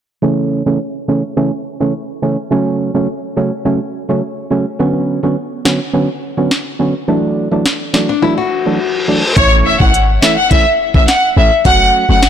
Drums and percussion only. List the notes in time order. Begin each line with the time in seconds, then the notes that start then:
5.65 snare
6.51 snare
7.66 snare
7.94 snare
9.37 kick, closed hi-hat
9.80 kick
9.94 closed hi-hat
10.22 snare
10.51 kick, closed hi-hat
10.94 kick
11.08 snare, closed hi-hat
11.65 kick, closed hi-hat
12.23 snare, closed hi-hat